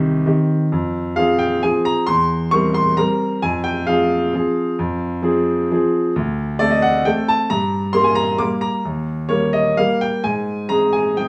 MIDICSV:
0, 0, Header, 1, 2, 480
1, 0, Start_track
1, 0, Tempo, 452489
1, 752, Time_signature, 3, 2, 24, 8
1, 9858, Tempo, 470219
1, 11888, End_track
2, 0, Start_track
2, 0, Title_t, "Grand piano"
2, 0, Program_c, 0, 0
2, 0, Control_c, 0, 64, 127
2, 0, Note_on_c, 0, 36, 67
2, 0, Note_on_c, 0, 51, 53
2, 0, Note_on_c, 0, 60, 49
2, 0, Note_on_c, 0, 67, 54
2, 0, Note_on_c, 0, 72, 82
2, 228, Note_off_c, 0, 51, 0
2, 232, Note_off_c, 0, 60, 0
2, 234, Note_off_c, 0, 67, 0
2, 275, Note_on_c, 0, 51, 50
2, 279, Note_on_c, 0, 60, 47
2, 282, Control_c, 0, 64, 0
2, 283, Note_off_c, 0, 36, 0
2, 286, Note_on_c, 0, 67, 50
2, 513, Note_off_c, 0, 72, 0
2, 715, Note_off_c, 0, 51, 0
2, 716, Note_off_c, 0, 60, 0
2, 720, Note_off_c, 0, 67, 0
2, 765, Note_on_c, 0, 41, 65
2, 973, Control_c, 0, 64, 127
2, 1221, Note_off_c, 0, 41, 0
2, 1231, Note_on_c, 0, 77, 92
2, 1242, Note_on_c, 0, 53, 53
2, 1245, Note_on_c, 0, 60, 53
2, 1249, Note_on_c, 0, 68, 55
2, 1471, Note_on_c, 0, 79, 88
2, 1474, Note_off_c, 0, 77, 0
2, 1681, Note_off_c, 0, 53, 0
2, 1683, Note_off_c, 0, 60, 0
2, 1684, Note_off_c, 0, 68, 0
2, 1716, Note_off_c, 0, 79, 0
2, 1726, Control_c, 0, 64, 0
2, 1726, Note_on_c, 0, 80, 85
2, 1735, Note_on_c, 0, 53, 50
2, 1740, Note_on_c, 0, 60, 45
2, 1742, Note_on_c, 0, 68, 51
2, 1960, Note_off_c, 0, 80, 0
2, 1965, Note_on_c, 0, 82, 93
2, 2155, Note_off_c, 0, 53, 0
2, 2157, Note_off_c, 0, 60, 0
2, 2158, Note_off_c, 0, 68, 0
2, 2191, Note_on_c, 0, 84, 102
2, 2193, Note_off_c, 0, 82, 0
2, 2207, Note_on_c, 0, 40, 62
2, 2396, Control_c, 0, 64, 127
2, 2659, Note_off_c, 0, 40, 0
2, 2665, Note_off_c, 0, 84, 0
2, 2666, Note_on_c, 0, 85, 103
2, 2679, Note_on_c, 0, 55, 51
2, 2683, Note_on_c, 0, 60, 54
2, 2688, Note_on_c, 0, 70, 54
2, 2906, Note_off_c, 0, 85, 0
2, 2911, Note_on_c, 0, 84, 90
2, 3114, Note_off_c, 0, 55, 0
2, 3117, Note_off_c, 0, 60, 0
2, 3119, Note_off_c, 0, 70, 0
2, 3151, Note_on_c, 0, 82, 86
2, 3152, Note_off_c, 0, 84, 0
2, 3159, Note_on_c, 0, 55, 49
2, 3163, Control_c, 0, 64, 0
2, 3165, Note_on_c, 0, 60, 46
2, 3169, Note_on_c, 0, 70, 55
2, 3591, Note_off_c, 0, 55, 0
2, 3594, Note_off_c, 0, 60, 0
2, 3596, Note_off_c, 0, 70, 0
2, 3629, Note_off_c, 0, 82, 0
2, 3632, Note_on_c, 0, 80, 98
2, 3639, Note_on_c, 0, 41, 66
2, 3795, Control_c, 0, 64, 127
2, 3859, Note_on_c, 0, 79, 95
2, 3861, Note_off_c, 0, 80, 0
2, 4084, Note_off_c, 0, 41, 0
2, 4093, Note_off_c, 0, 79, 0
2, 4101, Note_on_c, 0, 77, 88
2, 4111, Note_on_c, 0, 53, 50
2, 4114, Note_on_c, 0, 60, 52
2, 4115, Note_on_c, 0, 68, 56
2, 4548, Note_off_c, 0, 53, 0
2, 4550, Note_off_c, 0, 60, 0
2, 4551, Note_off_c, 0, 68, 0
2, 4595, Control_c, 0, 64, 0
2, 4601, Note_on_c, 0, 53, 50
2, 4601, Note_on_c, 0, 60, 50
2, 4610, Note_on_c, 0, 68, 51
2, 5029, Note_off_c, 0, 53, 0
2, 5029, Note_off_c, 0, 60, 0
2, 5033, Note_off_c, 0, 68, 0
2, 5081, Note_on_c, 0, 41, 70
2, 5252, Control_c, 0, 64, 127
2, 5531, Note_off_c, 0, 41, 0
2, 5540, Note_on_c, 0, 53, 53
2, 5545, Note_on_c, 0, 60, 53
2, 5550, Note_on_c, 0, 68, 58
2, 5999, Note_off_c, 0, 53, 0
2, 6001, Note_off_c, 0, 60, 0
2, 6003, Note_off_c, 0, 68, 0
2, 6046, Control_c, 0, 64, 0
2, 6057, Note_on_c, 0, 53, 50
2, 6063, Note_on_c, 0, 60, 50
2, 6066, Note_on_c, 0, 68, 56
2, 6289, Note_off_c, 0, 77, 0
2, 6486, Note_off_c, 0, 53, 0
2, 6489, Note_off_c, 0, 60, 0
2, 6491, Note_off_c, 0, 68, 0
2, 6533, Note_on_c, 0, 38, 68
2, 6732, Control_c, 0, 64, 127
2, 6986, Note_off_c, 0, 38, 0
2, 6992, Note_on_c, 0, 74, 98
2, 7004, Note_on_c, 0, 57, 52
2, 7005, Note_on_c, 0, 60, 53
2, 7009, Note_on_c, 0, 69, 61
2, 7114, Note_on_c, 0, 75, 68
2, 7115, Note_off_c, 0, 74, 0
2, 7236, Note_off_c, 0, 75, 0
2, 7238, Note_on_c, 0, 78, 86
2, 7444, Note_off_c, 0, 57, 0
2, 7445, Note_off_c, 0, 60, 0
2, 7447, Note_off_c, 0, 69, 0
2, 7482, Note_off_c, 0, 78, 0
2, 7482, Note_on_c, 0, 79, 96
2, 7493, Note_on_c, 0, 57, 45
2, 7495, Note_on_c, 0, 60, 50
2, 7497, Control_c, 0, 64, 0
2, 7500, Note_on_c, 0, 69, 51
2, 7723, Note_off_c, 0, 79, 0
2, 7727, Note_on_c, 0, 81, 98
2, 7918, Note_off_c, 0, 57, 0
2, 7919, Note_off_c, 0, 60, 0
2, 7921, Note_off_c, 0, 69, 0
2, 7955, Note_on_c, 0, 82, 98
2, 7957, Note_off_c, 0, 81, 0
2, 7961, Note_on_c, 0, 43, 65
2, 8131, Control_c, 0, 64, 127
2, 8404, Note_off_c, 0, 43, 0
2, 8411, Note_on_c, 0, 84, 102
2, 8415, Note_off_c, 0, 82, 0
2, 8419, Note_on_c, 0, 55, 49
2, 8423, Note_on_c, 0, 58, 50
2, 8427, Note_on_c, 0, 70, 56
2, 8529, Note_on_c, 0, 80, 75
2, 8532, Note_off_c, 0, 84, 0
2, 8649, Note_on_c, 0, 82, 96
2, 8652, Note_off_c, 0, 80, 0
2, 8861, Note_off_c, 0, 55, 0
2, 8864, Note_off_c, 0, 58, 0
2, 8865, Note_off_c, 0, 70, 0
2, 8895, Note_on_c, 0, 86, 101
2, 8899, Note_off_c, 0, 82, 0
2, 8907, Note_on_c, 0, 55, 46
2, 8909, Note_on_c, 0, 58, 48
2, 8912, Note_on_c, 0, 70, 55
2, 8917, Control_c, 0, 64, 0
2, 9135, Note_on_c, 0, 82, 85
2, 9144, Note_off_c, 0, 86, 0
2, 9343, Note_off_c, 0, 55, 0
2, 9344, Note_off_c, 0, 58, 0
2, 9345, Note_off_c, 0, 70, 0
2, 9376, Note_off_c, 0, 82, 0
2, 9388, Note_on_c, 0, 39, 66
2, 9564, Control_c, 0, 64, 127
2, 9849, Note_off_c, 0, 39, 0
2, 9851, Note_on_c, 0, 73, 81
2, 9862, Note_on_c, 0, 55, 48
2, 9862, Note_on_c, 0, 58, 49
2, 9870, Note_on_c, 0, 70, 56
2, 10096, Note_off_c, 0, 73, 0
2, 10100, Note_on_c, 0, 75, 76
2, 10306, Note_off_c, 0, 55, 0
2, 10306, Note_off_c, 0, 58, 0
2, 10310, Note_off_c, 0, 70, 0
2, 10345, Note_off_c, 0, 75, 0
2, 10348, Note_on_c, 0, 77, 91
2, 10354, Note_on_c, 0, 55, 45
2, 10358, Control_c, 0, 64, 0
2, 10361, Note_on_c, 0, 58, 46
2, 10365, Note_on_c, 0, 70, 50
2, 10591, Note_off_c, 0, 77, 0
2, 10592, Note_on_c, 0, 79, 89
2, 10789, Note_off_c, 0, 55, 0
2, 10792, Note_off_c, 0, 58, 0
2, 10794, Note_off_c, 0, 70, 0
2, 10822, Note_on_c, 0, 80, 90
2, 10826, Note_off_c, 0, 79, 0
2, 10831, Note_on_c, 0, 44, 58
2, 11035, Control_c, 0, 64, 127
2, 11280, Note_off_c, 0, 44, 0
2, 11283, Note_on_c, 0, 82, 86
2, 11290, Note_off_c, 0, 80, 0
2, 11290, Note_on_c, 0, 56, 43
2, 11295, Note_on_c, 0, 60, 45
2, 11297, Note_on_c, 0, 68, 51
2, 11526, Note_on_c, 0, 80, 78
2, 11528, Note_off_c, 0, 82, 0
2, 11735, Note_off_c, 0, 56, 0
2, 11738, Note_off_c, 0, 60, 0
2, 11739, Note_off_c, 0, 68, 0
2, 11774, Note_off_c, 0, 80, 0
2, 11775, Note_on_c, 0, 79, 83
2, 11784, Control_c, 0, 64, 0
2, 11784, Note_on_c, 0, 56, 44
2, 11788, Note_on_c, 0, 60, 42
2, 11792, Note_on_c, 0, 68, 48
2, 11888, Note_off_c, 0, 56, 0
2, 11888, Note_off_c, 0, 60, 0
2, 11888, Note_off_c, 0, 68, 0
2, 11888, Note_off_c, 0, 79, 0
2, 11888, End_track
0, 0, End_of_file